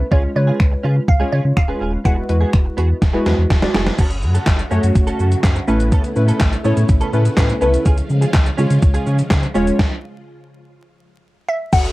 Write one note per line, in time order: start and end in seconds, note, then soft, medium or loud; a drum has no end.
0.00 0.13 B4 medium
0.00 muted clean electric guitar stroke soft
0.11 0.27 C#2 loud
0.11 0.32 G#3 medium
0.11 0.30 C#4 medium
0.11 0.32 C#4 medium
0.11 0.32 F4 medium
0.11 0.23 F4 medium
0.11 0.22 G#4 medium
0.11 0.23 C#5 medium
0.11 0.32 C#5 medium
0.11 kick loud
0.23 muted clean electric guitar stroke soft
0.35 0.51 C#3 loud
0.35 1.06 G#3 medium
0.35 1.06 C#4 medium
0.35 1.06 F4 medium
0.35 1.06 B4 medium
0.35 1.05 C#5 medium
0.35 muted clean electric guitar stroke soft
0.47 0.58 C#4 medium
0.47 0.59 F4 medium
0.47 0.60 G#4 medium
0.60 0.76 C#2 loud
0.60 finger snap loud
0.60 muted clean electric guitar stroke soft
0.60 kick loud
0.72 muted clean electric guitar stroke soft
0.83 1.00 C#3 loud
0.83 1.02 C#4 medium
0.83 0.96 F4 medium
0.83 0.95 G#4 medium
0.96 muted clean electric guitar stroke medium
1.08 1.24 C#2 loud
1.08 1.31 F5 loud
1.08 muted clean electric guitar stroke soft
1.08 kick loud
1.20 1.61 G#3 medium
1.20 1.61 C#4 medium
1.20 1.31 C#4 medium
1.20 1.61 F4 medium
1.20 1.32 F4 medium
1.20 1.33 G#4 medium
1.20 1.61 C#5 medium
1.32 1.40 C#3 loud
1.32 1.47 C#4 medium
1.32 1.44 F4 medium
1.32 1.43 G#4 medium
1.32 1.57 C#5 medium
1.44 1.53 C#3 medium
1.44 muted clean electric guitar stroke soft
1.56 1.73 D1 medium
1.56 2.07 F5 loud
1.56 finger snap loud
1.56 muted clean electric guitar stroke soft
1.56 kick loud
1.68 1.99 G#3 medium
1.68 1.99 C#4 medium
1.68 1.79 C#4 medium
1.68 1.99 F4 medium
1.68 1.80 F4 medium
1.68 1.81 G#4 medium
1.68 1.99 B4 medium
1.80 1.97 D#1 loud
1.80 1.99 C#4 medium
1.80 1.93 F4 medium
1.80 1.91 G#4 medium
1.92 muted clean electric guitar stroke soft
2.04 2.21 E1 loud
2.04 2.25 G#3 medium
2.04 2.23 B3 medium
2.04 2.25 E4 medium
2.04 2.25 F#4 medium
2.04 2.17 F#4 medium
2.04 2.15 G#4 medium
2.04 2.25 B4 medium
2.04 3.46 F#5 loud
2.04 kick loud
2.04 closed hi-hat medium
2.17 muted clean electric guitar stroke soft
2.29 2.45 E2 loud
2.29 3.00 G#3 medium
2.29 3.00 E4 medium
2.29 3.00 F#4 medium
2.29 3.00 B4 medium
2.29 muted clean electric guitar stroke soft
2.29 closed hi-hat soft
2.41 2.52 B3 medium
2.41 2.53 F#4 medium
2.41 2.53 G#4 medium
2.53 2.69 E1 loud
2.53 finger snap loud
2.53 muted clean electric guitar stroke soft
2.53 kick loud
2.53 closed hi-hat medium
2.65 muted clean electric guitar stroke soft
2.77 2.93 E2 loud
2.77 2.96 B3 medium
2.77 2.90 F#4 medium
2.77 2.88 G#4 medium
2.77 closed hi-hat medium
2.89 muted clean electric guitar stroke soft
3.01 3.18 E1 loud
3.01 muted clean electric guitar stroke soft
3.01 kick loud
3.01 snare medium
3.01 closed hi-hat medium
3.13 3.54 G#3 medium
3.13 3.24 B3 medium
3.13 3.54 E4 medium
3.13 3.54 F#4 medium
3.13 3.25 F#4 medium
3.13 3.26 G#4 medium
3.13 3.54 B4 loud
3.25 3.34 E2 loud
3.25 3.40 B3 medium
3.25 3.38 F#4 medium
3.25 3.37 G#4 medium
3.25 snare medium
3.25 closed hi-hat soft
3.38 3.46 E2 loud
3.38 muted clean electric guitar stroke soft
3.50 3.66 E1 loud
3.50 kick loud
3.50 snare medium
3.50 closed hi-hat medium
3.62 3.92 G#3 medium
3.62 3.93 E4 medium
3.62 3.93 F#4 medium
3.62 3.93 D5 medium
3.62 muted clean electric guitar stroke soft
3.62 snare medium
3.74 3.90 F1 loud
3.74 3.92 B3 medium
3.74 3.86 F#4 medium
3.74 3.85 G#4 loud
3.74 snare medium
3.74 closed hi-hat medium
3.86 muted clean electric guitar stroke soft
3.86 snare medium
3.98 4.24 F#1 loud
3.98 7.82 C#3 medium
3.98 5.66 F#3 medium
3.98 5.66 A3 medium
3.98 4.17 C#4 medium
3.98 5.66 F#4 medium
3.98 4.11 F#4 medium
3.98 4.09 A4 medium
3.98 kick loud
3.98 closed hi-hat medium
3.98 crash medium
3.98 shaker medium
4.11 muted clean electric guitar stroke soft
4.11 closed hi-hat soft
4.11 shaker soft
4.23 4.39 F#2 loud
4.23 muted clean electric guitar stroke soft
4.23 shaker soft
4.34 4.46 C#4 medium
4.34 4.46 F#4 medium
4.34 4.47 A4 medium
4.34 closed hi-hat medium
4.34 shaker medium
4.46 4.63 F#1 loud
4.46 kick loud
4.46 snare medium
4.46 clap loud
4.46 closed hi-hat medium
4.46 shaker medium
4.59 muted clean electric guitar stroke soft
4.59 closed hi-hat soft
4.59 shaker soft
4.71 4.79 F#2 medium
4.71 5.52 A3 medium
4.71 4.89 C#4 medium
4.71 5.52 C#4 medium
4.71 5.52 F#4 medium
4.71 4.83 F#4 medium
4.71 4.82 A4 medium
4.71 5.52 C#5 medium
4.71 shaker medium
4.83 4.91 F#2 medium
4.83 muted clean electric guitar stroke soft
4.83 closed hi-hat medium
4.83 shaker medium
4.95 5.11 F#1 loud
4.95 muted clean electric guitar stroke soft
4.95 kick loud
4.95 closed hi-hat medium
4.95 shaker medium
5.07 5.18 C#4 medium
5.07 5.19 F#4 medium
5.07 5.20 A4 medium
5.07 closed hi-hat soft
5.07 shaker soft
5.19 5.35 F#2 loud
5.19 5.34 C#4 medium
5.19 5.32 F#4 medium
5.19 5.30 A4 medium
5.19 shaker soft
5.31 muted clean electric guitar stroke soft
5.31 closed hi-hat soft
5.31 shaker medium
5.43 5.60 F#2 loud
5.43 kick loud
5.43 snare medium
5.43 clap loud
5.43 closed hi-hat medium
5.43 shaker medium
5.56 muted clean electric guitar stroke soft
5.56 closed hi-hat soft
5.56 shaker soft
5.67 6.00 A1 loud
5.67 6.08 A3 medium
5.67 7.84 A3 medium
5.67 5.86 B3 medium
5.67 7.84 B3 medium
5.67 6.08 C#4 medium
5.67 5.80 C#4 medium
5.67 7.84 E4 medium
5.67 6.08 E4 medium
5.67 5.78 A4 medium
5.67 6.08 B4 loud
5.67 shaker medium
5.80 muted clean electric guitar stroke soft
5.80 closed hi-hat soft
5.80 shaker medium
5.92 6.10 B3 medium
5.92 6.04 C#4 medium
5.92 6.03 A4 loud
5.92 kick loud
5.92 closed hi-hat medium
5.92 shaker medium
6.04 muted clean electric guitar stroke soft
6.04 closed hi-hat soft
6.04 shaker soft
6.16 6.32 A2 loud
6.16 6.57 A3 medium
6.16 6.57 C#4 medium
6.16 6.57 E4 medium
6.16 6.57 B4 medium
6.16 muted clean electric guitar stroke soft
6.16 shaker soft
6.28 6.39 B3 soft
6.28 6.40 C#4 medium
6.28 6.40 A4 medium
6.28 closed hi-hat medium
6.28 shaker medium
6.40 6.56 A1 loud
6.40 muted clean electric guitar stroke soft
6.40 kick loud
6.40 snare medium
6.40 clap loud
6.40 closed hi-hat medium
6.40 shaker medium
6.52 muted clean electric guitar stroke medium
6.52 closed hi-hat soft
6.52 shaker soft
6.64 6.73 A2 loud
6.64 7.05 A3 medium
6.64 6.83 B3 medium
6.64 7.05 C#4 medium
6.64 6.77 C#4 medium
6.64 7.05 E4 medium
6.64 6.75 A4 medium
6.64 7.05 C#5 loud
6.64 shaker medium
6.77 6.85 A2 loud
6.77 muted clean electric guitar stroke soft
6.77 closed hi-hat medium
6.77 shaker medium
6.89 7.05 A1 loud
6.89 muted clean electric guitar stroke soft
6.89 kick loud
6.89 closed hi-hat medium
6.89 shaker medium
7.01 7.11 B3 medium
7.01 7.12 C#4 medium
7.01 7.13 A4 medium
7.01 closed hi-hat soft
7.01 shaker soft
7.13 7.29 A2 loud
7.13 7.33 A3 medium
7.13 7.27 B3 medium
7.13 7.33 C#4 medium
7.13 7.25 C#4 medium
7.13 7.33 E4 medium
7.13 7.24 A4 medium
7.13 7.33 B4 medium
7.13 shaker soft
7.25 muted clean electric guitar stroke soft
7.25 closed hi-hat medium
7.25 shaker medium
7.37 7.53 A2 loud
7.37 7.57 A3 medium
7.37 7.58 C#4 medium
7.37 7.58 E4 medium
7.37 7.58 B4 medium
7.37 kick loud
7.37 snare loud
7.37 clap loud
7.37 closed hi-hat medium
7.37 shaker medium
7.49 muted clean electric guitar stroke soft
7.49 closed hi-hat soft
7.49 shaker soft
7.61 7.77 C2 medium
7.61 7.86 A3 medium
7.61 7.80 B3 medium
7.61 7.86 C#4 medium
7.61 7.73 C#4 medium
7.61 7.86 E4 medium
7.61 7.72 A4 medium
7.61 7.86 B4 loud
7.61 shaker medium
7.73 muted clean electric guitar stroke soft
7.73 closed hi-hat medium
7.73 shaker medium
7.85 8.01 C#2 loud
7.85 9.77 C#3 medium
7.85 9.77 F3 medium
7.85 9.77 G#3 medium
7.85 8.04 C#4 medium
7.85 9.77 F4 medium
7.85 7.98 F4 medium
7.85 7.96 G#4 loud
7.85 kick loud
7.85 closed hi-hat medium
7.85 shaker medium
7.97 muted clean electric guitar stroke soft
7.97 closed hi-hat soft
7.97 shaker soft
8.09 8.26 C#3 loud
8.09 muted clean electric guitar stroke soft
8.09 shaker soft
8.21 8.32 C#4 medium
8.21 8.33 F4 medium
8.21 8.34 G#4 medium
8.21 closed hi-hat medium
8.21 shaker medium
8.33 8.50 C#2 medium
8.33 muted clean electric guitar stroke soft
8.33 kick loud
8.33 snare medium
8.33 clap loud
8.33 closed hi-hat medium
8.33 shaker medium
8.46 muted clean electric guitar stroke soft
8.46 closed hi-hat medium
8.46 shaker soft
8.57 8.66 C#3 loud
8.57 9.39 G#3 medium
8.57 8.76 C#4 loud
8.57 9.39 C#4 medium
8.57 9.39 F4 medium
8.57 8.70 F4 medium
8.57 8.69 G#4 loud
8.57 9.39 C#5 loud
8.57 shaker medium
8.70 8.78 C#3 loud
8.70 muted clean electric guitar stroke soft
8.70 closed hi-hat medium
8.70 shaker medium
8.82 8.98 C#2 loud
8.82 muted clean electric guitar stroke soft
8.82 kick loud
8.82 closed hi-hat medium
8.82 shaker medium
8.94 9.05 C#4 medium
8.94 9.06 F4 medium
8.94 9.07 G#4 medium
8.94 closed hi-hat soft
8.94 shaker soft
9.06 9.22 C#3 loud
9.06 9.21 C#4 medium
9.06 9.18 F4 medium
9.06 9.17 G#4 medium
9.06 shaker soft
9.18 muted clean electric guitar stroke soft
9.18 closed hi-hat medium
9.18 shaker medium
9.30 9.47 C#3 loud
9.30 kick loud
9.30 snare loud
9.30 clap loud
9.30 closed hi-hat medium
9.30 shaker medium
9.42 muted clean electric guitar stroke soft
9.42 closed hi-hat soft
9.42 shaker soft
9.54 9.71 D#1 medium
9.54 9.79 G#3 loud
9.54 9.73 C#4 medium
9.54 9.79 C#4 medium
9.54 9.79 F4 medium
9.54 9.67 F4 medium
9.54 9.66 G#4 medium
9.54 9.79 C#5 loud
9.54 shaker medium
9.67 muted clean electric guitar stroke medium
9.67 closed hi-hat soft
9.67 shaker medium
9.79 kick loud
9.79 snare medium
11.49 11.74 E5 loud
11.73 11.89 F#1 loud
11.73 11.92 C#3 medium
11.73 11.92 F#3 medium
11.73 11.92 A3 medium
11.73 11.92 C#4 medium
11.73 11.92 F#4 medium
11.73 11.92 A4 medium
11.73 11.92 F#5 loud
11.73 kick loud
11.73 crash loud
11.73 downlifter medium
11.73 shaker medium
11.85 closed hi-hat soft
11.85 shaker soft